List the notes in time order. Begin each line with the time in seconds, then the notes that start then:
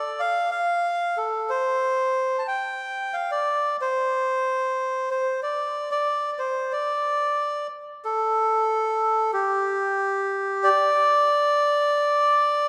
Already playing: D5
0.20 F5
0.51 F5
1.17 A4
1.49 C5
2.39 A5
2.48 G5
3.13 F5
3.31 D5
3.81 C5
5.11 C5
5.43 D5
5.91 D5
6.33 D5
6.39 C5
6.72 D5
8.05 A4
9.33 G4
10.64 D5